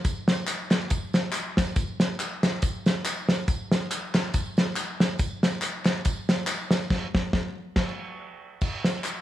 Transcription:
0.05 kick, closed hi-hat, tambourine
0.28 snare, closed hi-hat, tambourine
0.47 clap, closed hi-hat, tambourine
0.71 snare, clap, closed hi-hat, tambourine
0.90 kick, closed hi-hat, tambourine
1.13 snare, closed hi-hat, tambourine
1.32 clap, closed hi-hat, tambourine
1.57 kick, snare, closed hi-hat, tambourine
1.76 kick, closed hi-hat, tambourine
2.00 snare, closed hi-hat, tambourine
2.20 clap, closed hi-hat, tambourine
2.43 snare, clap, closed hi-hat, tambourine
2.62 kick, closed hi-hat, tambourine
2.86 snare, closed hi-hat, tambourine
3.05 clap, closed hi-hat, tambourine
3.29 snare, closed hi-hat, tambourine
3.48 kick, closed hi-hat, tambourine
3.72 snare, closed hi-hat, tambourine
3.91 clap, closed hi-hat, tambourine
4.14 snare, clap, closed hi-hat, tambourine
4.34 kick, closed hi-hat, tambourine
4.57 snare, closed hi-hat, tambourine
4.76 clap, closed hi-hat, tambourine
5.00 snare, closed hi-hat, tambourine
5.19 kick, closed hi-hat, tambourine
5.43 snare, closed hi-hat, tambourine
5.62 clap, closed hi-hat, tambourine
5.85 snare, clap, closed hi-hat, tambourine
6.05 kick, closed hi-hat, tambourine
6.29 snare, closed hi-hat, tambourine
6.47 clap, closed hi-hat, tambourine
6.71 snare, closed hi-hat, tambourine
6.90 kick, snare, crash
7.15 kick, snare
7.33 kick, snare
7.76 kick, snare, crash
8.61 kick, crash, tambourine
8.85 snare, closed hi-hat, tambourine
9.04 clap, closed hi-hat, tambourine

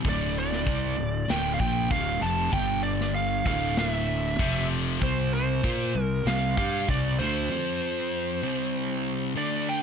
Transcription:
0.03 D1 D2 A2 D3, kick, open hi-hat
0.09 D5
0.39 D5
0.52 snare
0.66 C2 C3 G3 C4, kick, open hi-hat
0.97 D1 D2 A2
1.28 D1 D2 A2 D3 G5, snare, open hi-hat
1.54 F5
1.59 A#1 A#2 F3 A#3 G5, kick
1.89 D1 D2 A2 D3 F5, kick, open hi-hat
2.21 F1 F2 C3 F3 A5
2.52 G1 G2 D3 G3 G5, kick, open hi-hat
2.83 D5
3.01 snare
3.15 F5, open hi-hat
3.45 D1 D2 A2 D3 F5, kick
3.76 E5, snare, open hi-hat
4.39 F1 F2 C3 F3, kick, open hi-hat
5.02 C2 C3 G3 C4 C5, kick, open hi-hat
5.34 C5
5.63 A#2 A#3 F4 A#4, kick, open hi-hat
5.95 C2 C3 G3
6.02 A#4
6.25 C2 C3 G3 C4 F5, snare, open hi-hat
6.57 G2 G3 D4 G4 F5, kick
6.88 C2 C3 G3 C4 D5, kick, open hi-hat
7.19 D2 D3 A3 D4 C5
7.49 F3 C4 F4
8.42 C3 G3 C4
9.35 D3 A3 D4 D5
9.69 G5

